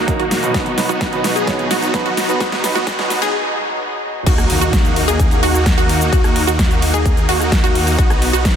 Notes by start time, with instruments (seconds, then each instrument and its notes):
Already playing: analog synth pad D#2 A#2 F#3, supersaw synth A#3 D#4 F#4, synth pluck F#4, riser
0.07 grand piano F#3 A#3 D#4 A#4, kick, closed hi-hat, shaker
0.19 supersaw synth A#3 D#4 F#4, synth pluck F#4, closed hi-hat
0.31 snare, open hi-hat, shaker
0.42 grand piano B2 F#3 B3 D#4 B4, closed hi-hat, shaker
0.54 analog synth pad B2 D#4, supersaw synth B3 D#4 F#4, synth pluck F#4, kick, snare, closed hi-hat, shaker
0.66 closed hi-hat
0.77 grand piano B2 F#3 B3 D#4 B4, snare, open hi-hat, shaker
0.89 supersaw synth B3 D#4 F#4, synth pluck F#4, closed hi-hat, shaker
1.01 kick, snare, closed hi-hat, shaker
1.12 grand piano B2 F#3 B3 D#4 B4, closed hi-hat
1.24 snare, open hi-hat, shaker
1.36 supersaw synth B3 D#4 G#4, synth pluck G#4, closed hi-hat, shaker
1.47 grand piano B2 F#3 B3 D#4 C#5, kick, snare, closed hi-hat, shaker
1.59 closed hi-hat
1.71 supersaw synth B3 D#4 F#4, synth pluck F#4, snare, open hi-hat, shaker
1.82 closed hi-hat, shaker
1.94 grand piano B2 F#3 B3 D#4 B4, kick, snare, closed hi-hat, shaker
2.06 supersaw synth B3 D#4 F#4, synth pluck F#4, closed hi-hat
2.17 snare, open hi-hat, shaker
2.28 grand piano B2 F#3 B3 D#4 B4, closed hi-hat, shaker
2.40 supersaw synth B3 D#4 F#4, synth pluck F#4, kick, snare, closed hi-hat, shaker
2.52 snare, closed hi-hat
2.63 grand piano B2 F#3 B3 D#4 B4, snare, open hi-hat, shaker
2.75 supersaw synth B3 D#4 F#4, synth pluck F#4, snare, closed hi-hat, shaker
2.87 kick, snare, closed hi-hat, shaker
2.98 grand piano B2 F#3 B3 D#4 B4, snare, closed hi-hat
3.10 snare, open hi-hat, shaker
3.22 supersaw synth B3 D#4 G#4, synth pluck G#4, snare, closed hi-hat, shaker
4.26 detuned saw bass D#2, analog synth pad D#3 A#3 F#4, supersaw synth A#3 D#4 F#4, synth pluck F#4, kick, closed hi-hat, crash, impact, shaker
4.38 cross-stick, closed hi-hat, shaker
4.50 open hi-hat
4.61 detuned saw bass D#2, supersaw synth A#3 D#4 F#4, synth pluck F#4, closed hi-hat, shaker
4.73 kick, snare, closed hi-hat, shaker
4.85 closed hi-hat, shaker
4.96 open hi-hat
5.08 detuned saw bass D#2, supersaw synth A#3 D#4 G#4, synth pluck G#4, closed hi-hat, shaker
5.20 kick, closed hi-hat, shaker
5.31 closed hi-hat, shaker
5.43 detuned saw bass D#2, supersaw synth A#3 D#4 F#4, synth pluck F#4, open hi-hat
5.55 cross-stick, closed hi-hat, shaker
5.66 kick, snare, closed hi-hat, shaker
5.78 detuned saw bass D#2, supersaw synth A#3 D#4 F#4, synth pluck F#4, closed hi-hat, shaker
5.89 open hi-hat
6.01 closed hi-hat, shaker
6.12 supersaw synth A#3 D#4 F#4, synth pluck F#4, kick, closed hi-hat, shaker
6.24 cross-stick, closed hi-hat, shaker
6.36 open hi-hat
6.47 detuned saw bass D#2, supersaw synth A#3 D#4 F#4, synth pluck F#4, closed hi-hat, shaker
6.59 kick, snare, closed hi-hat, shaker
6.71 closed hi-hat, shaker
6.82 open hi-hat
6.94 detuned saw bass D#2, supersaw synth A#3 D#4 G#4, synth pluck G#4, closed hi-hat, shaker
7.06 kick, closed hi-hat, shaker
7.17 closed hi-hat, shaker
7.29 detuned saw bass D#2, supersaw synth A#3 D#4 F#4, synth pluck F#4, open hi-hat
7.40 cross-stick, closed hi-hat, shaker
7.52 kick, snare, closed hi-hat, shaker
7.64 detuned saw bass D#2, supersaw synth A#3 D#4 F#4, synth pluck F#4, closed hi-hat, shaker
7.75 open hi-hat
7.87 open hi-hat, shaker
7.99 detuned saw bass B1, analog synth pad F#3 B3 D#4, supersaw synth B3 D#4 F#4, synth pluck F#4, kick, closed hi-hat, shaker
8.10 cross-stick, closed hi-hat, shaker
8.22 open hi-hat
8.33 detuned saw bass B1, supersaw synth B3 D#4 F#4, synth pluck F#4, closed hi-hat, shaker
8.45 kick, snare, closed hi-hat, shaker